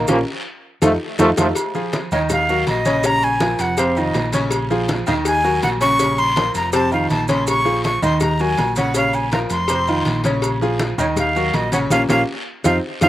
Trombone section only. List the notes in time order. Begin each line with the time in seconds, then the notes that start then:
0.09 C#3 F3 A#3
0.82 D#3 F3 A3
1.20 D#3 F3 A3
1.38 D#3 F3 A3